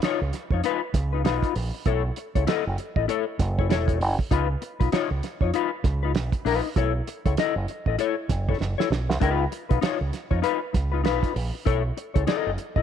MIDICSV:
0, 0, Header, 1, 6, 480
1, 0, Start_track
1, 0, Tempo, 612870
1, 1459, Time_signature, 4, 2, 24, 8
1, 10044, End_track
2, 0, Start_track
2, 0, Title_t, "Clean electric guitar"
2, 0, Program_c, 0, 27
2, 26, Note_on_c, 0, 63, 93
2, 35, Note_on_c, 0, 65, 100
2, 39, Note_on_c, 0, 73, 97
2, 143, Note_off_c, 0, 63, 0
2, 148, Note_off_c, 0, 65, 0
2, 150, Note_off_c, 0, 73, 0
2, 406, Note_on_c, 0, 73, 57
2, 418, Note_on_c, 0, 65, 57
2, 422, Note_on_c, 0, 63, 51
2, 468, Note_off_c, 0, 73, 0
2, 474, Note_off_c, 0, 65, 0
2, 476, Note_off_c, 0, 63, 0
2, 499, Note_on_c, 0, 63, 73
2, 509, Note_on_c, 0, 65, 93
2, 513, Note_on_c, 0, 71, 109
2, 620, Note_off_c, 0, 63, 0
2, 625, Note_off_c, 0, 65, 0
2, 627, Note_off_c, 0, 71, 0
2, 883, Note_on_c, 0, 71, 53
2, 892, Note_on_c, 0, 65, 49
2, 895, Note_on_c, 0, 63, 53
2, 946, Note_off_c, 0, 71, 0
2, 951, Note_off_c, 0, 65, 0
2, 952, Note_off_c, 0, 63, 0
2, 975, Note_on_c, 0, 63, 90
2, 984, Note_on_c, 0, 65, 85
2, 989, Note_on_c, 0, 71, 85
2, 1202, Note_off_c, 0, 63, 0
2, 1206, Note_off_c, 0, 65, 0
2, 1208, Note_off_c, 0, 71, 0
2, 1455, Note_on_c, 0, 64, 80
2, 1464, Note_on_c, 0, 69, 86
2, 1471, Note_on_c, 0, 73, 83
2, 1578, Note_off_c, 0, 64, 0
2, 1582, Note_off_c, 0, 69, 0
2, 1585, Note_off_c, 0, 73, 0
2, 1843, Note_on_c, 0, 73, 62
2, 1848, Note_on_c, 0, 69, 52
2, 1857, Note_on_c, 0, 64, 52
2, 1906, Note_off_c, 0, 73, 0
2, 1908, Note_off_c, 0, 69, 0
2, 1913, Note_off_c, 0, 64, 0
2, 1934, Note_on_c, 0, 64, 99
2, 1944, Note_on_c, 0, 69, 112
2, 1950, Note_on_c, 0, 75, 99
2, 2057, Note_off_c, 0, 64, 0
2, 2061, Note_off_c, 0, 69, 0
2, 2065, Note_off_c, 0, 75, 0
2, 2321, Note_on_c, 0, 75, 59
2, 2331, Note_on_c, 0, 69, 61
2, 2336, Note_on_c, 0, 64, 51
2, 2384, Note_off_c, 0, 75, 0
2, 2389, Note_off_c, 0, 69, 0
2, 2392, Note_off_c, 0, 64, 0
2, 2412, Note_on_c, 0, 64, 85
2, 2418, Note_on_c, 0, 69, 100
2, 2427, Note_on_c, 0, 73, 96
2, 2535, Note_off_c, 0, 64, 0
2, 2538, Note_off_c, 0, 69, 0
2, 2543, Note_off_c, 0, 73, 0
2, 2808, Note_on_c, 0, 73, 53
2, 2816, Note_on_c, 0, 69, 51
2, 2824, Note_on_c, 0, 64, 45
2, 2868, Note_off_c, 0, 73, 0
2, 2872, Note_off_c, 0, 69, 0
2, 2876, Note_off_c, 0, 64, 0
2, 2894, Note_on_c, 0, 64, 82
2, 2902, Note_on_c, 0, 69, 74
2, 2910, Note_on_c, 0, 73, 83
2, 3120, Note_off_c, 0, 64, 0
2, 3124, Note_off_c, 0, 69, 0
2, 3128, Note_off_c, 0, 73, 0
2, 3374, Note_on_c, 0, 63, 76
2, 3383, Note_on_c, 0, 65, 83
2, 3390, Note_on_c, 0, 71, 96
2, 3496, Note_off_c, 0, 63, 0
2, 3500, Note_off_c, 0, 65, 0
2, 3504, Note_off_c, 0, 71, 0
2, 3757, Note_on_c, 0, 71, 62
2, 3768, Note_on_c, 0, 65, 46
2, 3774, Note_on_c, 0, 63, 46
2, 3822, Note_off_c, 0, 71, 0
2, 3827, Note_off_c, 0, 65, 0
2, 3830, Note_off_c, 0, 63, 0
2, 3856, Note_on_c, 0, 63, 97
2, 3863, Note_on_c, 0, 65, 101
2, 3868, Note_on_c, 0, 73, 108
2, 3977, Note_off_c, 0, 63, 0
2, 3980, Note_off_c, 0, 65, 0
2, 3982, Note_off_c, 0, 73, 0
2, 4242, Note_on_c, 0, 73, 63
2, 4249, Note_on_c, 0, 65, 53
2, 4254, Note_on_c, 0, 63, 44
2, 4304, Note_off_c, 0, 73, 0
2, 4308, Note_off_c, 0, 65, 0
2, 4310, Note_off_c, 0, 63, 0
2, 4336, Note_on_c, 0, 63, 88
2, 4346, Note_on_c, 0, 65, 98
2, 4352, Note_on_c, 0, 71, 96
2, 4456, Note_off_c, 0, 63, 0
2, 4461, Note_off_c, 0, 65, 0
2, 4464, Note_off_c, 0, 71, 0
2, 4721, Note_on_c, 0, 71, 61
2, 4730, Note_on_c, 0, 65, 54
2, 4735, Note_on_c, 0, 63, 47
2, 4783, Note_off_c, 0, 71, 0
2, 4788, Note_off_c, 0, 65, 0
2, 4790, Note_off_c, 0, 63, 0
2, 5051, Note_on_c, 0, 63, 90
2, 5058, Note_on_c, 0, 65, 91
2, 5066, Note_on_c, 0, 71, 98
2, 5190, Note_off_c, 0, 71, 0
2, 5204, Note_off_c, 0, 65, 0
2, 5227, Note_off_c, 0, 63, 0
2, 5299, Note_on_c, 0, 64, 80
2, 5303, Note_on_c, 0, 69, 90
2, 5310, Note_on_c, 0, 73, 81
2, 5417, Note_off_c, 0, 64, 0
2, 5420, Note_off_c, 0, 69, 0
2, 5423, Note_off_c, 0, 73, 0
2, 5682, Note_on_c, 0, 73, 59
2, 5686, Note_on_c, 0, 69, 51
2, 5693, Note_on_c, 0, 64, 45
2, 5744, Note_off_c, 0, 73, 0
2, 5745, Note_off_c, 0, 69, 0
2, 5749, Note_off_c, 0, 64, 0
2, 5779, Note_on_c, 0, 64, 83
2, 5783, Note_on_c, 0, 69, 95
2, 5791, Note_on_c, 0, 75, 101
2, 5898, Note_off_c, 0, 64, 0
2, 5899, Note_off_c, 0, 69, 0
2, 5903, Note_off_c, 0, 75, 0
2, 6167, Note_on_c, 0, 75, 60
2, 6172, Note_on_c, 0, 69, 59
2, 6180, Note_on_c, 0, 64, 41
2, 6226, Note_off_c, 0, 75, 0
2, 6228, Note_off_c, 0, 69, 0
2, 6232, Note_off_c, 0, 64, 0
2, 6253, Note_on_c, 0, 64, 84
2, 6264, Note_on_c, 0, 69, 91
2, 6268, Note_on_c, 0, 73, 99
2, 6374, Note_off_c, 0, 64, 0
2, 6380, Note_off_c, 0, 69, 0
2, 6382, Note_off_c, 0, 73, 0
2, 6647, Note_on_c, 0, 73, 67
2, 6653, Note_on_c, 0, 69, 57
2, 6662, Note_on_c, 0, 64, 55
2, 6706, Note_off_c, 0, 73, 0
2, 6709, Note_off_c, 0, 69, 0
2, 6713, Note_off_c, 0, 64, 0
2, 6877, Note_on_c, 0, 73, 82
2, 6886, Note_on_c, 0, 69, 84
2, 6890, Note_on_c, 0, 64, 79
2, 6958, Note_off_c, 0, 73, 0
2, 6963, Note_off_c, 0, 69, 0
2, 6965, Note_off_c, 0, 64, 0
2, 7207, Note_on_c, 0, 63, 84
2, 7214, Note_on_c, 0, 65, 86
2, 7223, Note_on_c, 0, 71, 91
2, 7384, Note_off_c, 0, 63, 0
2, 7388, Note_off_c, 0, 65, 0
2, 7393, Note_off_c, 0, 71, 0
2, 7591, Note_on_c, 0, 71, 57
2, 7597, Note_on_c, 0, 65, 59
2, 7603, Note_on_c, 0, 63, 49
2, 7658, Note_off_c, 0, 71, 0
2, 7661, Note_off_c, 0, 65, 0
2, 7664, Note_off_c, 0, 63, 0
2, 7685, Note_on_c, 0, 63, 91
2, 7693, Note_on_c, 0, 65, 87
2, 7701, Note_on_c, 0, 73, 91
2, 7811, Note_off_c, 0, 63, 0
2, 7815, Note_off_c, 0, 65, 0
2, 7818, Note_off_c, 0, 73, 0
2, 8072, Note_on_c, 0, 73, 56
2, 8079, Note_on_c, 0, 65, 53
2, 8086, Note_on_c, 0, 63, 51
2, 8138, Note_off_c, 0, 73, 0
2, 8142, Note_off_c, 0, 65, 0
2, 8146, Note_off_c, 0, 63, 0
2, 8161, Note_on_c, 0, 63, 80
2, 8164, Note_on_c, 0, 65, 78
2, 8173, Note_on_c, 0, 71, 91
2, 8289, Note_off_c, 0, 63, 0
2, 8290, Note_off_c, 0, 65, 0
2, 8295, Note_off_c, 0, 71, 0
2, 8549, Note_on_c, 0, 71, 60
2, 8561, Note_on_c, 0, 65, 61
2, 8567, Note_on_c, 0, 63, 50
2, 8617, Note_off_c, 0, 71, 0
2, 8623, Note_off_c, 0, 65, 0
2, 8626, Note_off_c, 0, 63, 0
2, 8643, Note_on_c, 0, 63, 80
2, 8651, Note_on_c, 0, 65, 80
2, 8658, Note_on_c, 0, 71, 93
2, 8874, Note_off_c, 0, 63, 0
2, 8878, Note_off_c, 0, 65, 0
2, 8882, Note_off_c, 0, 71, 0
2, 9128, Note_on_c, 0, 64, 92
2, 9133, Note_on_c, 0, 69, 84
2, 9139, Note_on_c, 0, 73, 96
2, 9252, Note_off_c, 0, 64, 0
2, 9255, Note_off_c, 0, 69, 0
2, 9258, Note_off_c, 0, 73, 0
2, 9510, Note_on_c, 0, 73, 60
2, 9518, Note_on_c, 0, 69, 58
2, 9524, Note_on_c, 0, 64, 46
2, 9578, Note_off_c, 0, 73, 0
2, 9582, Note_off_c, 0, 69, 0
2, 9585, Note_off_c, 0, 64, 0
2, 9609, Note_on_c, 0, 64, 85
2, 9615, Note_on_c, 0, 69, 96
2, 9623, Note_on_c, 0, 75, 106
2, 9786, Note_off_c, 0, 64, 0
2, 9789, Note_off_c, 0, 69, 0
2, 9793, Note_off_c, 0, 75, 0
2, 9994, Note_on_c, 0, 75, 65
2, 10002, Note_on_c, 0, 69, 54
2, 10009, Note_on_c, 0, 64, 47
2, 10044, Note_off_c, 0, 64, 0
2, 10044, Note_off_c, 0, 69, 0
2, 10044, Note_off_c, 0, 75, 0
2, 10044, End_track
3, 0, Start_track
3, 0, Title_t, "Fingered electric bass"
3, 0, Program_c, 1, 33
3, 167, Note_on_c, 1, 37, 97
3, 240, Note_off_c, 1, 37, 0
3, 396, Note_on_c, 1, 41, 77
3, 473, Note_off_c, 1, 41, 0
3, 737, Note_on_c, 1, 37, 101
3, 973, Note_off_c, 1, 37, 0
3, 973, Note_on_c, 1, 35, 90
3, 1086, Note_off_c, 1, 35, 0
3, 1220, Note_on_c, 1, 34, 88
3, 1330, Note_off_c, 1, 34, 0
3, 1456, Note_on_c, 1, 35, 103
3, 1642, Note_off_c, 1, 35, 0
3, 1844, Note_on_c, 1, 37, 94
3, 1918, Note_off_c, 1, 37, 0
3, 2090, Note_on_c, 1, 30, 93
3, 2161, Note_off_c, 1, 30, 0
3, 2319, Note_on_c, 1, 33, 76
3, 2394, Note_off_c, 1, 33, 0
3, 2657, Note_on_c, 1, 30, 108
3, 2900, Note_off_c, 1, 30, 0
3, 2900, Note_on_c, 1, 28, 93
3, 3147, Note_off_c, 1, 28, 0
3, 3147, Note_on_c, 1, 30, 83
3, 3254, Note_off_c, 1, 30, 0
3, 3376, Note_on_c, 1, 37, 110
3, 3561, Note_off_c, 1, 37, 0
3, 3762, Note_on_c, 1, 35, 92
3, 3835, Note_off_c, 1, 35, 0
3, 3999, Note_on_c, 1, 37, 83
3, 4073, Note_off_c, 1, 37, 0
3, 4236, Note_on_c, 1, 41, 68
3, 4311, Note_off_c, 1, 41, 0
3, 4575, Note_on_c, 1, 37, 93
3, 4814, Note_off_c, 1, 37, 0
3, 4814, Note_on_c, 1, 35, 87
3, 4925, Note_off_c, 1, 35, 0
3, 5053, Note_on_c, 1, 34, 82
3, 5165, Note_off_c, 1, 34, 0
3, 5296, Note_on_c, 1, 35, 102
3, 5481, Note_off_c, 1, 35, 0
3, 5685, Note_on_c, 1, 37, 95
3, 5756, Note_off_c, 1, 37, 0
3, 5917, Note_on_c, 1, 30, 99
3, 5992, Note_off_c, 1, 30, 0
3, 6156, Note_on_c, 1, 33, 79
3, 6231, Note_off_c, 1, 33, 0
3, 6498, Note_on_c, 1, 30, 90
3, 6682, Note_off_c, 1, 30, 0
3, 6735, Note_on_c, 1, 30, 90
3, 6846, Note_off_c, 1, 30, 0
3, 6971, Note_on_c, 1, 35, 81
3, 7119, Note_off_c, 1, 35, 0
3, 7119, Note_on_c, 1, 36, 96
3, 7193, Note_off_c, 1, 36, 0
3, 7217, Note_on_c, 1, 37, 108
3, 7401, Note_off_c, 1, 37, 0
3, 7601, Note_on_c, 1, 35, 98
3, 7674, Note_off_c, 1, 35, 0
3, 7838, Note_on_c, 1, 37, 85
3, 7912, Note_off_c, 1, 37, 0
3, 8074, Note_on_c, 1, 41, 76
3, 8150, Note_off_c, 1, 41, 0
3, 8415, Note_on_c, 1, 37, 92
3, 8654, Note_off_c, 1, 37, 0
3, 8654, Note_on_c, 1, 35, 87
3, 8766, Note_off_c, 1, 35, 0
3, 8895, Note_on_c, 1, 34, 87
3, 9006, Note_off_c, 1, 34, 0
3, 9135, Note_on_c, 1, 35, 105
3, 9321, Note_off_c, 1, 35, 0
3, 9519, Note_on_c, 1, 37, 102
3, 9593, Note_off_c, 1, 37, 0
3, 9762, Note_on_c, 1, 30, 92
3, 9835, Note_off_c, 1, 30, 0
3, 9993, Note_on_c, 1, 33, 84
3, 10044, Note_off_c, 1, 33, 0
3, 10044, End_track
4, 0, Start_track
4, 0, Title_t, "Muted clean electric guitar strokes"
4, 263, Note_on_c, 9, 29, 32
4, 341, Note_off_c, 9, 29, 0
4, 740, Note_on_c, 9, 29, 38
4, 819, Note_off_c, 9, 29, 0
4, 1219, Note_on_c, 9, 29, 46
4, 1297, Note_off_c, 9, 29, 0
4, 1365, Note_on_c, 9, 29, 40
4, 1444, Note_off_c, 9, 29, 0
4, 1699, Note_on_c, 9, 29, 40
4, 1777, Note_off_c, 9, 29, 0
4, 2179, Note_on_c, 9, 29, 35
4, 2257, Note_off_c, 9, 29, 0
4, 2655, Note_on_c, 9, 29, 42
4, 2733, Note_off_c, 9, 29, 0
4, 3133, Note_on_c, 9, 29, 44
4, 3211, Note_off_c, 9, 29, 0
4, 3281, Note_on_c, 9, 29, 47
4, 3359, Note_off_c, 9, 29, 0
4, 3615, Note_on_c, 9, 29, 43
4, 3693, Note_off_c, 9, 29, 0
4, 4097, Note_on_c, 9, 29, 33
4, 4175, Note_off_c, 9, 29, 0
4, 4575, Note_on_c, 9, 29, 46
4, 4653, Note_off_c, 9, 29, 0
4, 4816, Note_on_c, 9, 29, 41
4, 4894, Note_off_c, 9, 29, 0
4, 4961, Note_on_c, 9, 29, 44
4, 5040, Note_off_c, 9, 29, 0
4, 5200, Note_on_c, 9, 29, 44
4, 5278, Note_off_c, 9, 29, 0
4, 5540, Note_on_c, 9, 29, 39
4, 5618, Note_off_c, 9, 29, 0
4, 6023, Note_on_c, 9, 29, 31
4, 6102, Note_off_c, 9, 29, 0
4, 6502, Note_on_c, 9, 29, 36
4, 6580, Note_off_c, 9, 29, 0
4, 6738, Note_on_c, 9, 29, 30
4, 6816, Note_off_c, 9, 29, 0
4, 6989, Note_on_c, 9, 29, 51
4, 7067, Note_off_c, 9, 29, 0
4, 7124, Note_on_c, 9, 29, 43
4, 7203, Note_off_c, 9, 29, 0
4, 7455, Note_on_c, 9, 29, 48
4, 7533, Note_off_c, 9, 29, 0
4, 7929, Note_on_c, 9, 29, 37
4, 8007, Note_off_c, 9, 29, 0
4, 8403, Note_on_c, 9, 29, 41
4, 8482, Note_off_c, 9, 29, 0
4, 8887, Note_on_c, 9, 29, 48
4, 8965, Note_off_c, 9, 29, 0
4, 9035, Note_on_c, 9, 29, 40
4, 9113, Note_off_c, 9, 29, 0
4, 9374, Note_on_c, 9, 29, 47
4, 9453, Note_off_c, 9, 29, 0
4, 9848, Note_on_c, 9, 29, 35
4, 9926, Note_off_c, 9, 29, 0
4, 10044, End_track
5, 0, Start_track
5, 0, Title_t, "Muted fingered electric bass strokes"
5, 23, Note_on_c, 9, 29, 48
5, 101, Note_off_c, 9, 29, 0
5, 1945, Note_on_c, 9, 29, 44
5, 2023, Note_off_c, 9, 29, 0
5, 3859, Note_on_c, 9, 29, 49
5, 3937, Note_off_c, 9, 29, 0
5, 5773, Note_on_c, 9, 29, 48
5, 5851, Note_off_c, 9, 29, 0
5, 7695, Note_on_c, 9, 29, 43
5, 7774, Note_off_c, 9, 29, 0
5, 10044, End_track
6, 0, Start_track
6, 0, Title_t, "Drums"
6, 15, Note_on_c, 9, 42, 78
6, 23, Note_on_c, 9, 38, 108
6, 94, Note_off_c, 9, 42, 0
6, 101, Note_off_c, 9, 38, 0
6, 259, Note_on_c, 9, 42, 63
6, 266, Note_on_c, 9, 38, 31
6, 337, Note_off_c, 9, 42, 0
6, 345, Note_off_c, 9, 38, 0
6, 396, Note_on_c, 9, 36, 85
6, 474, Note_off_c, 9, 36, 0
6, 497, Note_on_c, 9, 42, 85
6, 576, Note_off_c, 9, 42, 0
6, 736, Note_on_c, 9, 36, 103
6, 738, Note_on_c, 9, 42, 88
6, 744, Note_on_c, 9, 38, 35
6, 814, Note_off_c, 9, 36, 0
6, 816, Note_off_c, 9, 42, 0
6, 822, Note_off_c, 9, 38, 0
6, 978, Note_on_c, 9, 42, 77
6, 986, Note_on_c, 9, 38, 110
6, 1057, Note_off_c, 9, 42, 0
6, 1064, Note_off_c, 9, 38, 0
6, 1116, Note_on_c, 9, 36, 97
6, 1124, Note_on_c, 9, 42, 58
6, 1195, Note_off_c, 9, 36, 0
6, 1202, Note_off_c, 9, 42, 0
6, 1218, Note_on_c, 9, 46, 83
6, 1296, Note_off_c, 9, 46, 0
6, 1453, Note_on_c, 9, 42, 86
6, 1455, Note_on_c, 9, 36, 108
6, 1532, Note_off_c, 9, 42, 0
6, 1534, Note_off_c, 9, 36, 0
6, 1694, Note_on_c, 9, 42, 74
6, 1772, Note_off_c, 9, 42, 0
6, 1844, Note_on_c, 9, 36, 81
6, 1845, Note_on_c, 9, 42, 54
6, 1922, Note_off_c, 9, 36, 0
6, 1923, Note_off_c, 9, 42, 0
6, 1938, Note_on_c, 9, 42, 86
6, 1945, Note_on_c, 9, 38, 117
6, 2016, Note_off_c, 9, 42, 0
6, 2024, Note_off_c, 9, 38, 0
6, 2178, Note_on_c, 9, 42, 64
6, 2256, Note_off_c, 9, 42, 0
6, 2318, Note_on_c, 9, 36, 99
6, 2397, Note_off_c, 9, 36, 0
6, 2421, Note_on_c, 9, 42, 98
6, 2499, Note_off_c, 9, 42, 0
6, 2658, Note_on_c, 9, 36, 89
6, 2659, Note_on_c, 9, 42, 85
6, 2665, Note_on_c, 9, 38, 42
6, 2736, Note_off_c, 9, 36, 0
6, 2738, Note_off_c, 9, 42, 0
6, 2744, Note_off_c, 9, 38, 0
6, 2809, Note_on_c, 9, 36, 96
6, 2887, Note_off_c, 9, 36, 0
6, 2901, Note_on_c, 9, 42, 80
6, 2908, Note_on_c, 9, 38, 95
6, 2979, Note_off_c, 9, 42, 0
6, 2987, Note_off_c, 9, 38, 0
6, 3038, Note_on_c, 9, 36, 101
6, 3045, Note_on_c, 9, 42, 56
6, 3116, Note_off_c, 9, 36, 0
6, 3123, Note_off_c, 9, 42, 0
6, 3141, Note_on_c, 9, 46, 75
6, 3220, Note_off_c, 9, 46, 0
6, 3281, Note_on_c, 9, 36, 90
6, 3359, Note_off_c, 9, 36, 0
6, 3377, Note_on_c, 9, 36, 118
6, 3378, Note_on_c, 9, 42, 84
6, 3455, Note_off_c, 9, 36, 0
6, 3456, Note_off_c, 9, 42, 0
6, 3618, Note_on_c, 9, 42, 67
6, 3696, Note_off_c, 9, 42, 0
6, 3764, Note_on_c, 9, 36, 89
6, 3765, Note_on_c, 9, 42, 49
6, 3843, Note_off_c, 9, 36, 0
6, 3844, Note_off_c, 9, 42, 0
6, 3856, Note_on_c, 9, 42, 86
6, 3864, Note_on_c, 9, 38, 116
6, 3935, Note_off_c, 9, 42, 0
6, 3942, Note_off_c, 9, 38, 0
6, 4097, Note_on_c, 9, 42, 64
6, 4105, Note_on_c, 9, 38, 31
6, 4175, Note_off_c, 9, 42, 0
6, 4183, Note_off_c, 9, 38, 0
6, 4236, Note_on_c, 9, 36, 95
6, 4314, Note_off_c, 9, 36, 0
6, 4336, Note_on_c, 9, 42, 88
6, 4414, Note_off_c, 9, 42, 0
6, 4575, Note_on_c, 9, 36, 103
6, 4578, Note_on_c, 9, 42, 78
6, 4584, Note_on_c, 9, 38, 39
6, 4653, Note_off_c, 9, 36, 0
6, 4657, Note_off_c, 9, 42, 0
6, 4663, Note_off_c, 9, 38, 0
6, 4814, Note_on_c, 9, 42, 79
6, 4822, Note_on_c, 9, 38, 112
6, 4893, Note_off_c, 9, 42, 0
6, 4900, Note_off_c, 9, 38, 0
6, 4953, Note_on_c, 9, 36, 100
6, 4956, Note_on_c, 9, 42, 57
6, 5031, Note_off_c, 9, 36, 0
6, 5034, Note_off_c, 9, 42, 0
6, 5059, Note_on_c, 9, 46, 78
6, 5138, Note_off_c, 9, 46, 0
6, 5296, Note_on_c, 9, 36, 112
6, 5296, Note_on_c, 9, 42, 85
6, 5374, Note_off_c, 9, 36, 0
6, 5374, Note_off_c, 9, 42, 0
6, 5541, Note_on_c, 9, 42, 72
6, 5619, Note_off_c, 9, 42, 0
6, 5683, Note_on_c, 9, 36, 98
6, 5684, Note_on_c, 9, 42, 49
6, 5762, Note_off_c, 9, 36, 0
6, 5762, Note_off_c, 9, 42, 0
6, 5775, Note_on_c, 9, 42, 86
6, 5782, Note_on_c, 9, 38, 120
6, 5853, Note_off_c, 9, 42, 0
6, 5861, Note_off_c, 9, 38, 0
6, 6017, Note_on_c, 9, 42, 65
6, 6095, Note_off_c, 9, 42, 0
6, 6157, Note_on_c, 9, 36, 88
6, 6235, Note_off_c, 9, 36, 0
6, 6255, Note_on_c, 9, 42, 94
6, 6334, Note_off_c, 9, 42, 0
6, 6496, Note_on_c, 9, 36, 92
6, 6497, Note_on_c, 9, 42, 87
6, 6504, Note_on_c, 9, 38, 39
6, 6574, Note_off_c, 9, 36, 0
6, 6576, Note_off_c, 9, 42, 0
6, 6582, Note_off_c, 9, 38, 0
6, 6646, Note_on_c, 9, 36, 88
6, 6725, Note_off_c, 9, 36, 0
6, 6744, Note_on_c, 9, 38, 52
6, 6823, Note_off_c, 9, 38, 0
6, 6893, Note_on_c, 9, 38, 65
6, 6971, Note_off_c, 9, 38, 0
6, 6987, Note_on_c, 9, 38, 94
6, 7065, Note_off_c, 9, 38, 0
6, 7130, Note_on_c, 9, 38, 84
6, 7208, Note_off_c, 9, 38, 0
6, 7217, Note_on_c, 9, 36, 114
6, 7217, Note_on_c, 9, 42, 85
6, 7295, Note_off_c, 9, 42, 0
6, 7296, Note_off_c, 9, 36, 0
6, 7457, Note_on_c, 9, 42, 68
6, 7535, Note_off_c, 9, 42, 0
6, 7601, Note_on_c, 9, 42, 48
6, 7604, Note_on_c, 9, 36, 89
6, 7680, Note_off_c, 9, 42, 0
6, 7682, Note_off_c, 9, 36, 0
6, 7694, Note_on_c, 9, 42, 81
6, 7701, Note_on_c, 9, 38, 112
6, 7772, Note_off_c, 9, 42, 0
6, 7780, Note_off_c, 9, 38, 0
6, 7935, Note_on_c, 9, 42, 64
6, 7943, Note_on_c, 9, 38, 35
6, 8013, Note_off_c, 9, 42, 0
6, 8021, Note_off_c, 9, 38, 0
6, 8075, Note_on_c, 9, 36, 82
6, 8153, Note_off_c, 9, 36, 0
6, 8173, Note_on_c, 9, 42, 86
6, 8252, Note_off_c, 9, 42, 0
6, 8414, Note_on_c, 9, 36, 99
6, 8416, Note_on_c, 9, 42, 85
6, 8422, Note_on_c, 9, 38, 39
6, 8493, Note_off_c, 9, 36, 0
6, 8494, Note_off_c, 9, 42, 0
6, 8500, Note_off_c, 9, 38, 0
6, 8652, Note_on_c, 9, 42, 70
6, 8659, Note_on_c, 9, 38, 100
6, 8730, Note_off_c, 9, 42, 0
6, 8737, Note_off_c, 9, 38, 0
6, 8794, Note_on_c, 9, 36, 90
6, 8800, Note_on_c, 9, 42, 57
6, 8872, Note_off_c, 9, 36, 0
6, 8879, Note_off_c, 9, 42, 0
6, 8898, Note_on_c, 9, 46, 79
6, 8976, Note_off_c, 9, 46, 0
6, 9136, Note_on_c, 9, 36, 116
6, 9138, Note_on_c, 9, 42, 84
6, 9214, Note_off_c, 9, 36, 0
6, 9216, Note_off_c, 9, 42, 0
6, 9379, Note_on_c, 9, 42, 67
6, 9457, Note_off_c, 9, 42, 0
6, 9521, Note_on_c, 9, 42, 54
6, 9522, Note_on_c, 9, 36, 93
6, 9600, Note_off_c, 9, 36, 0
6, 9600, Note_off_c, 9, 42, 0
6, 9613, Note_on_c, 9, 42, 79
6, 9621, Note_on_c, 9, 38, 114
6, 9692, Note_off_c, 9, 42, 0
6, 9699, Note_off_c, 9, 38, 0
6, 9853, Note_on_c, 9, 42, 69
6, 9931, Note_off_c, 9, 42, 0
6, 9994, Note_on_c, 9, 36, 98
6, 10044, Note_off_c, 9, 36, 0
6, 10044, End_track
0, 0, End_of_file